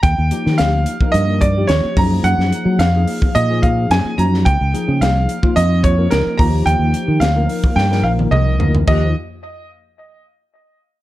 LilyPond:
<<
  \new Staff \with { instrumentName = "Grand piano" } { \time 4/4 \key ees \major \tempo 4 = 109 g''4 f''4 ees''8 d''8 des''8 bes''8 | ges''4 f''4 ees''8 f''8 aes''8 bes''8 | g''4 f''4 ees''8 des''8 bes'8 bes''8 | g''4 f''4 g''8 f''8 ees''8. r16 |
ees''8 r2. r8 | }
  \new Staff \with { instrumentName = "Tine electric piano" } { \time 4/4 \key ees \major r8 <f bes ees' g'>4~ <f bes ees' g'>16 <f bes ees' bes'>4 <f bes ees' g'>8. <f bes ees' aes'>8~ | <f bes ees' aes'>4 r16 <f bes ees' aes'>4 <f bes ees' aes'>4~ <f bes ees' aes'>16 <f bes ees' ges'>8 | r8 <f bes ees' aes'>4~ <f bes ees' aes'>16 <f bes ees' f'>4 <f bes ees' bes'>8. <f bes ees' g'>8~ | <f bes ees' g'>4 r16 <f bes ees' bes'>4 <f bes ees' bes'>4~ <f bes ees' bes'>16 <f bes ees' bes'>8 |
<f bes ees' g'>8 r2. r8 | }
  \new Staff \with { instrumentName = "Fretless electric bass" } { \clef bass \time 4/4 \key ees \major ees,16 ees,16 r16 ees16 d,8 r8 g,4 ees,16 r16 ges,8 | ges,16 ges,16 r16 ges16 f,8 r8 bes,4 ges,16 r16 ges,8 | des,16 des,16 r16 des16 c,8 r8 f,4 des,16 r16 ees,8 | ees,16 ees,16 r16 ees16 d,8 r8 g,8 bes,,8 c,8 d,8 |
ees,8 r2. r8 | }
  \new DrumStaff \with { instrumentName = "Drums" } \drummode { \time 4/4 <hh bd>8 hh16 sn16 <hh sn>8 hh16 bd16 hh8 <hh bd>8 <hh sn>8 <hho bd>8 | hh16 sn16 hh8 <hh sn>8 hho16 bd16 hh8 <hh bd>8 <hh sn>8 hh16 sn16 | <hh bd>8 hh8 <hh sn>8 hh16 bd16 hh8 <hh bd>8 <hh sn>8 <hho bd>8 | hh8 hh8 <hh sn>8 hho16 bd16 sn16 sn8 tommh16 toml8 tomfh16 tomfh16 |
<cymc bd>4 r4 r4 r4 | }
>>